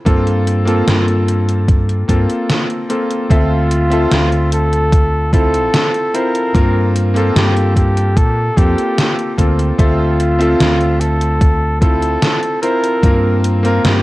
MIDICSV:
0, 0, Header, 1, 5, 480
1, 0, Start_track
1, 0, Key_signature, -1, "minor"
1, 0, Tempo, 810811
1, 37, Time_signature, 4, 2, 24, 8
1, 8303, End_track
2, 0, Start_track
2, 0, Title_t, "Flugelhorn"
2, 0, Program_c, 0, 56
2, 1961, Note_on_c, 0, 65, 92
2, 2655, Note_off_c, 0, 65, 0
2, 2683, Note_on_c, 0, 69, 108
2, 3137, Note_off_c, 0, 69, 0
2, 3163, Note_on_c, 0, 69, 110
2, 3641, Note_on_c, 0, 70, 109
2, 3650, Note_off_c, 0, 69, 0
2, 4119, Note_off_c, 0, 70, 0
2, 4354, Note_on_c, 0, 67, 95
2, 4579, Note_off_c, 0, 67, 0
2, 4596, Note_on_c, 0, 67, 97
2, 4836, Note_on_c, 0, 69, 111
2, 4845, Note_off_c, 0, 67, 0
2, 5075, Note_on_c, 0, 67, 97
2, 5084, Note_off_c, 0, 69, 0
2, 5556, Note_off_c, 0, 67, 0
2, 5794, Note_on_c, 0, 65, 94
2, 6511, Note_on_c, 0, 69, 107
2, 6520, Note_off_c, 0, 65, 0
2, 6987, Note_off_c, 0, 69, 0
2, 6990, Note_on_c, 0, 69, 113
2, 7450, Note_off_c, 0, 69, 0
2, 7472, Note_on_c, 0, 70, 111
2, 7931, Note_off_c, 0, 70, 0
2, 8201, Note_on_c, 0, 67, 91
2, 8303, Note_off_c, 0, 67, 0
2, 8303, End_track
3, 0, Start_track
3, 0, Title_t, "Electric grand piano"
3, 0, Program_c, 1, 2
3, 0, Control_c, 1, 64, 127
3, 29, Note_on_c, 1, 58, 87
3, 34, Note_on_c, 1, 60, 82
3, 35, Note_on_c, 1, 65, 83
3, 39, Note_on_c, 1, 69, 99
3, 44, Control_c, 1, 64, 0
3, 150, Control_c, 1, 64, 127
3, 365, Note_off_c, 1, 58, 0
3, 367, Note_off_c, 1, 60, 0
3, 368, Note_off_c, 1, 65, 0
3, 370, Note_off_c, 1, 69, 0
3, 386, Note_on_c, 1, 58, 92
3, 391, Note_on_c, 1, 60, 84
3, 397, Note_on_c, 1, 65, 83
3, 403, Note_on_c, 1, 69, 101
3, 1207, Note_off_c, 1, 58, 0
3, 1210, Note_off_c, 1, 60, 0
3, 1213, Note_off_c, 1, 65, 0
3, 1216, Note_off_c, 1, 69, 0
3, 1231, Note_on_c, 1, 58, 81
3, 1234, Note_on_c, 1, 60, 73
3, 1237, Note_on_c, 1, 65, 73
3, 1241, Note_on_c, 1, 69, 89
3, 1685, Note_off_c, 1, 58, 0
3, 1687, Note_off_c, 1, 60, 0
3, 1689, Note_off_c, 1, 65, 0
3, 1690, Note_off_c, 1, 69, 0
3, 1712, Note_on_c, 1, 58, 74
3, 1715, Note_on_c, 1, 60, 68
3, 1718, Note_on_c, 1, 65, 69
3, 1722, Note_on_c, 1, 69, 80
3, 1926, Note_off_c, 1, 58, 0
3, 1928, Note_off_c, 1, 60, 0
3, 1929, Note_off_c, 1, 65, 0
3, 1931, Note_off_c, 1, 69, 0
3, 1952, Note_on_c, 1, 60, 87
3, 1956, Note_on_c, 1, 76, 82
3, 1958, Note_on_c, 1, 65, 81
3, 1962, Note_on_c, 1, 69, 95
3, 1966, Control_c, 1, 64, 0
3, 2067, Control_c, 1, 64, 127
3, 2287, Note_off_c, 1, 60, 0
3, 2288, Note_off_c, 1, 76, 0
3, 2290, Note_off_c, 1, 65, 0
3, 2291, Note_off_c, 1, 69, 0
3, 2309, Note_on_c, 1, 60, 92
3, 2316, Note_on_c, 1, 76, 84
3, 2321, Note_on_c, 1, 65, 86
3, 2327, Note_on_c, 1, 69, 99
3, 3129, Note_off_c, 1, 60, 0
3, 3132, Note_off_c, 1, 76, 0
3, 3135, Note_off_c, 1, 65, 0
3, 3138, Note_off_c, 1, 69, 0
3, 3153, Note_on_c, 1, 60, 82
3, 3157, Note_on_c, 1, 64, 74
3, 3159, Note_on_c, 1, 65, 73
3, 3162, Note_on_c, 1, 69, 90
3, 3606, Note_off_c, 1, 60, 0
3, 3608, Note_off_c, 1, 64, 0
3, 3610, Note_off_c, 1, 65, 0
3, 3611, Note_off_c, 1, 69, 0
3, 3633, Note_on_c, 1, 60, 75
3, 3636, Note_on_c, 1, 64, 70
3, 3639, Note_on_c, 1, 65, 69
3, 3642, Note_on_c, 1, 72, 84
3, 3847, Note_off_c, 1, 60, 0
3, 3848, Note_off_c, 1, 64, 0
3, 3850, Note_off_c, 1, 65, 0
3, 3851, Note_off_c, 1, 72, 0
3, 3871, Note_on_c, 1, 58, 88
3, 3875, Note_on_c, 1, 60, 81
3, 3878, Note_on_c, 1, 65, 82
3, 3881, Note_on_c, 1, 70, 99
3, 3885, Control_c, 1, 64, 0
3, 3982, Control_c, 1, 64, 127
3, 4206, Note_off_c, 1, 58, 0
3, 4208, Note_off_c, 1, 60, 0
3, 4209, Note_off_c, 1, 65, 0
3, 4211, Note_off_c, 1, 70, 0
3, 4227, Note_on_c, 1, 58, 91
3, 4232, Note_on_c, 1, 60, 83
3, 4239, Note_on_c, 1, 65, 84
3, 4245, Note_on_c, 1, 69, 100
3, 5048, Note_off_c, 1, 58, 0
3, 5050, Note_off_c, 1, 60, 0
3, 5054, Note_off_c, 1, 65, 0
3, 5057, Note_off_c, 1, 69, 0
3, 5070, Note_on_c, 1, 58, 82
3, 5073, Note_on_c, 1, 60, 74
3, 5075, Note_on_c, 1, 65, 74
3, 5080, Note_on_c, 1, 69, 88
3, 5525, Note_off_c, 1, 58, 0
3, 5527, Note_off_c, 1, 60, 0
3, 5528, Note_off_c, 1, 65, 0
3, 5530, Note_off_c, 1, 69, 0
3, 5550, Note_on_c, 1, 58, 77
3, 5554, Note_on_c, 1, 60, 70
3, 5557, Note_on_c, 1, 65, 69
3, 5560, Note_on_c, 1, 69, 84
3, 5765, Note_off_c, 1, 58, 0
3, 5767, Note_off_c, 1, 60, 0
3, 5768, Note_off_c, 1, 65, 0
3, 5770, Note_off_c, 1, 69, 0
3, 5792, Note_on_c, 1, 60, 92
3, 5796, Note_on_c, 1, 76, 83
3, 5798, Note_on_c, 1, 65, 83
3, 5801, Note_on_c, 1, 69, 100
3, 5803, Control_c, 1, 64, 0
3, 5923, Control_c, 1, 64, 127
3, 6126, Note_off_c, 1, 60, 0
3, 6128, Note_off_c, 1, 76, 0
3, 6130, Note_off_c, 1, 65, 0
3, 6131, Note_off_c, 1, 69, 0
3, 6149, Note_on_c, 1, 60, 91
3, 6154, Note_on_c, 1, 76, 85
3, 6160, Note_on_c, 1, 65, 85
3, 6166, Note_on_c, 1, 69, 102
3, 6968, Note_off_c, 1, 60, 0
3, 6971, Note_off_c, 1, 76, 0
3, 6974, Note_off_c, 1, 65, 0
3, 6977, Note_off_c, 1, 69, 0
3, 6992, Note_on_c, 1, 60, 80
3, 6996, Note_on_c, 1, 64, 73
3, 6998, Note_on_c, 1, 65, 73
3, 7002, Note_on_c, 1, 69, 88
3, 7446, Note_off_c, 1, 60, 0
3, 7448, Note_off_c, 1, 64, 0
3, 7449, Note_off_c, 1, 65, 0
3, 7451, Note_off_c, 1, 69, 0
3, 7473, Note_on_c, 1, 60, 74
3, 7477, Note_on_c, 1, 64, 72
3, 7479, Note_on_c, 1, 65, 70
3, 7482, Note_on_c, 1, 72, 84
3, 7686, Note_off_c, 1, 60, 0
3, 7688, Note_off_c, 1, 64, 0
3, 7690, Note_off_c, 1, 65, 0
3, 7691, Note_off_c, 1, 72, 0
3, 7711, Note_on_c, 1, 58, 90
3, 7715, Note_on_c, 1, 60, 83
3, 7718, Note_on_c, 1, 65, 82
3, 7720, Note_on_c, 1, 70, 100
3, 7726, Control_c, 1, 64, 0
3, 7816, Control_c, 1, 64, 127
3, 8046, Note_off_c, 1, 58, 0
3, 8048, Note_off_c, 1, 60, 0
3, 8049, Note_off_c, 1, 65, 0
3, 8051, Note_off_c, 1, 70, 0
3, 8068, Note_on_c, 1, 58, 91
3, 8075, Note_on_c, 1, 60, 86
3, 8081, Note_on_c, 1, 65, 87
3, 8087, Note_on_c, 1, 70, 103
3, 8303, Note_off_c, 1, 58, 0
3, 8303, Note_off_c, 1, 60, 0
3, 8303, Note_off_c, 1, 65, 0
3, 8303, Note_off_c, 1, 70, 0
3, 8303, End_track
4, 0, Start_track
4, 0, Title_t, "Fretless electric bass"
4, 0, Program_c, 2, 35
4, 37, Note_on_c, 2, 43, 97
4, 477, Note_off_c, 2, 43, 0
4, 518, Note_on_c, 2, 43, 91
4, 1197, Note_off_c, 2, 43, 0
4, 1236, Note_on_c, 2, 43, 81
4, 1332, Note_off_c, 2, 43, 0
4, 1956, Note_on_c, 2, 38, 96
4, 2397, Note_off_c, 2, 38, 0
4, 2436, Note_on_c, 2, 38, 92
4, 3357, Note_off_c, 2, 38, 0
4, 3875, Note_on_c, 2, 43, 98
4, 4316, Note_off_c, 2, 43, 0
4, 4355, Note_on_c, 2, 43, 91
4, 4831, Note_off_c, 2, 43, 0
4, 4835, Note_on_c, 2, 46, 93
4, 5026, Note_off_c, 2, 46, 0
4, 5075, Note_on_c, 2, 41, 92
4, 5171, Note_off_c, 2, 41, 0
4, 5555, Note_on_c, 2, 38, 83
4, 5746, Note_off_c, 2, 38, 0
4, 5795, Note_on_c, 2, 38, 101
4, 6236, Note_off_c, 2, 38, 0
4, 6275, Note_on_c, 2, 38, 96
4, 7196, Note_off_c, 2, 38, 0
4, 7716, Note_on_c, 2, 43, 99
4, 8156, Note_off_c, 2, 43, 0
4, 8195, Note_on_c, 2, 43, 94
4, 8303, Note_off_c, 2, 43, 0
4, 8303, End_track
5, 0, Start_track
5, 0, Title_t, "Drums"
5, 38, Note_on_c, 9, 36, 112
5, 38, Note_on_c, 9, 42, 78
5, 97, Note_off_c, 9, 36, 0
5, 98, Note_off_c, 9, 42, 0
5, 159, Note_on_c, 9, 42, 37
5, 219, Note_off_c, 9, 42, 0
5, 279, Note_on_c, 9, 42, 78
5, 339, Note_off_c, 9, 42, 0
5, 400, Note_on_c, 9, 42, 52
5, 459, Note_off_c, 9, 42, 0
5, 519, Note_on_c, 9, 38, 113
5, 519, Note_on_c, 9, 42, 79
5, 578, Note_off_c, 9, 38, 0
5, 578, Note_off_c, 9, 42, 0
5, 639, Note_on_c, 9, 42, 35
5, 699, Note_off_c, 9, 42, 0
5, 760, Note_on_c, 9, 42, 77
5, 819, Note_off_c, 9, 42, 0
5, 880, Note_on_c, 9, 42, 53
5, 940, Note_off_c, 9, 42, 0
5, 997, Note_on_c, 9, 36, 110
5, 998, Note_on_c, 9, 42, 82
5, 1056, Note_off_c, 9, 36, 0
5, 1057, Note_off_c, 9, 42, 0
5, 1120, Note_on_c, 9, 42, 36
5, 1179, Note_off_c, 9, 42, 0
5, 1237, Note_on_c, 9, 36, 58
5, 1239, Note_on_c, 9, 42, 77
5, 1296, Note_off_c, 9, 36, 0
5, 1298, Note_off_c, 9, 42, 0
5, 1360, Note_on_c, 9, 42, 53
5, 1419, Note_off_c, 9, 42, 0
5, 1478, Note_on_c, 9, 38, 113
5, 1478, Note_on_c, 9, 42, 79
5, 1537, Note_off_c, 9, 38, 0
5, 1537, Note_off_c, 9, 42, 0
5, 1598, Note_on_c, 9, 42, 36
5, 1658, Note_off_c, 9, 42, 0
5, 1716, Note_on_c, 9, 42, 80
5, 1776, Note_off_c, 9, 42, 0
5, 1839, Note_on_c, 9, 42, 50
5, 1898, Note_off_c, 9, 42, 0
5, 1956, Note_on_c, 9, 36, 120
5, 1958, Note_on_c, 9, 42, 84
5, 2016, Note_off_c, 9, 36, 0
5, 2017, Note_off_c, 9, 42, 0
5, 2197, Note_on_c, 9, 42, 81
5, 2256, Note_off_c, 9, 42, 0
5, 2318, Note_on_c, 9, 42, 53
5, 2378, Note_off_c, 9, 42, 0
5, 2436, Note_on_c, 9, 38, 117
5, 2436, Note_on_c, 9, 42, 82
5, 2496, Note_off_c, 9, 38, 0
5, 2496, Note_off_c, 9, 42, 0
5, 2559, Note_on_c, 9, 42, 38
5, 2618, Note_off_c, 9, 42, 0
5, 2677, Note_on_c, 9, 42, 82
5, 2737, Note_off_c, 9, 42, 0
5, 2799, Note_on_c, 9, 42, 56
5, 2858, Note_off_c, 9, 42, 0
5, 2916, Note_on_c, 9, 36, 118
5, 2918, Note_on_c, 9, 42, 83
5, 2975, Note_off_c, 9, 36, 0
5, 2977, Note_off_c, 9, 42, 0
5, 3155, Note_on_c, 9, 36, 105
5, 3159, Note_on_c, 9, 42, 81
5, 3215, Note_off_c, 9, 36, 0
5, 3218, Note_off_c, 9, 42, 0
5, 3280, Note_on_c, 9, 42, 55
5, 3339, Note_off_c, 9, 42, 0
5, 3397, Note_on_c, 9, 38, 120
5, 3397, Note_on_c, 9, 42, 84
5, 3456, Note_off_c, 9, 38, 0
5, 3456, Note_off_c, 9, 42, 0
5, 3518, Note_on_c, 9, 42, 38
5, 3577, Note_off_c, 9, 42, 0
5, 3638, Note_on_c, 9, 42, 82
5, 3697, Note_off_c, 9, 42, 0
5, 3758, Note_on_c, 9, 42, 54
5, 3818, Note_off_c, 9, 42, 0
5, 3875, Note_on_c, 9, 36, 122
5, 3878, Note_on_c, 9, 42, 85
5, 3934, Note_off_c, 9, 36, 0
5, 3938, Note_off_c, 9, 42, 0
5, 4118, Note_on_c, 9, 42, 83
5, 4178, Note_off_c, 9, 42, 0
5, 4240, Note_on_c, 9, 42, 55
5, 4299, Note_off_c, 9, 42, 0
5, 4359, Note_on_c, 9, 38, 123
5, 4359, Note_on_c, 9, 42, 83
5, 4418, Note_off_c, 9, 38, 0
5, 4418, Note_off_c, 9, 42, 0
5, 4479, Note_on_c, 9, 42, 38
5, 4539, Note_off_c, 9, 42, 0
5, 4595, Note_on_c, 9, 36, 63
5, 4598, Note_on_c, 9, 42, 80
5, 4655, Note_off_c, 9, 36, 0
5, 4657, Note_off_c, 9, 42, 0
5, 4719, Note_on_c, 9, 42, 56
5, 4778, Note_off_c, 9, 42, 0
5, 4835, Note_on_c, 9, 36, 121
5, 4837, Note_on_c, 9, 42, 85
5, 4894, Note_off_c, 9, 36, 0
5, 4896, Note_off_c, 9, 42, 0
5, 5075, Note_on_c, 9, 36, 107
5, 5078, Note_on_c, 9, 42, 86
5, 5134, Note_off_c, 9, 36, 0
5, 5138, Note_off_c, 9, 42, 0
5, 5199, Note_on_c, 9, 42, 54
5, 5258, Note_off_c, 9, 42, 0
5, 5317, Note_on_c, 9, 38, 121
5, 5317, Note_on_c, 9, 42, 84
5, 5377, Note_off_c, 9, 38, 0
5, 5377, Note_off_c, 9, 42, 0
5, 5439, Note_on_c, 9, 42, 38
5, 5498, Note_off_c, 9, 42, 0
5, 5555, Note_on_c, 9, 36, 64
5, 5558, Note_on_c, 9, 42, 83
5, 5614, Note_off_c, 9, 36, 0
5, 5618, Note_off_c, 9, 42, 0
5, 5678, Note_on_c, 9, 42, 54
5, 5737, Note_off_c, 9, 42, 0
5, 5795, Note_on_c, 9, 36, 126
5, 5798, Note_on_c, 9, 42, 83
5, 5855, Note_off_c, 9, 36, 0
5, 5857, Note_off_c, 9, 42, 0
5, 6038, Note_on_c, 9, 42, 79
5, 6097, Note_off_c, 9, 42, 0
5, 6160, Note_on_c, 9, 42, 53
5, 6220, Note_off_c, 9, 42, 0
5, 6277, Note_on_c, 9, 38, 126
5, 6277, Note_on_c, 9, 42, 83
5, 6337, Note_off_c, 9, 38, 0
5, 6337, Note_off_c, 9, 42, 0
5, 6398, Note_on_c, 9, 42, 38
5, 6457, Note_off_c, 9, 42, 0
5, 6517, Note_on_c, 9, 42, 78
5, 6577, Note_off_c, 9, 42, 0
5, 6637, Note_on_c, 9, 42, 56
5, 6697, Note_off_c, 9, 42, 0
5, 6756, Note_on_c, 9, 36, 123
5, 6757, Note_on_c, 9, 42, 83
5, 6815, Note_off_c, 9, 36, 0
5, 6816, Note_off_c, 9, 42, 0
5, 6996, Note_on_c, 9, 36, 109
5, 6997, Note_on_c, 9, 42, 84
5, 7055, Note_off_c, 9, 36, 0
5, 7056, Note_off_c, 9, 42, 0
5, 7118, Note_on_c, 9, 42, 54
5, 7177, Note_off_c, 9, 42, 0
5, 7236, Note_on_c, 9, 38, 126
5, 7236, Note_on_c, 9, 42, 81
5, 7296, Note_off_c, 9, 38, 0
5, 7296, Note_off_c, 9, 42, 0
5, 7358, Note_on_c, 9, 42, 39
5, 7417, Note_off_c, 9, 42, 0
5, 7476, Note_on_c, 9, 42, 83
5, 7536, Note_off_c, 9, 42, 0
5, 7600, Note_on_c, 9, 42, 53
5, 7659, Note_off_c, 9, 42, 0
5, 7716, Note_on_c, 9, 36, 124
5, 7717, Note_on_c, 9, 42, 78
5, 7775, Note_off_c, 9, 36, 0
5, 7776, Note_off_c, 9, 42, 0
5, 7958, Note_on_c, 9, 42, 77
5, 8017, Note_off_c, 9, 42, 0
5, 8079, Note_on_c, 9, 42, 51
5, 8139, Note_off_c, 9, 42, 0
5, 8197, Note_on_c, 9, 38, 123
5, 8197, Note_on_c, 9, 42, 80
5, 8256, Note_off_c, 9, 38, 0
5, 8256, Note_off_c, 9, 42, 0
5, 8303, End_track
0, 0, End_of_file